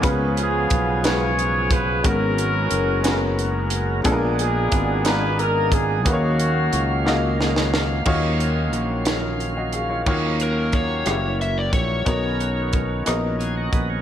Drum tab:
CC |------------|------------|------------|------------|
HH |x-x-x-x-x-x-|x-x-x-x-x-x-|x-x-x-x-x-x-|x-x-x-------|
SD |------o-----|------o-----|------o-----|------o-ooo-|
BD |o---o-----o-|o-----------|o---o-----o-|o-----------|

CC |x-----------|x-----------|------------|
HH |--x-x-x-x-x-|--x-x-x-x-x-|x-x-x-x-x-x-|
SD |------o-----|------r-----|------r-----|
BD |o-----------|o---o-----o-|o---o-----o-|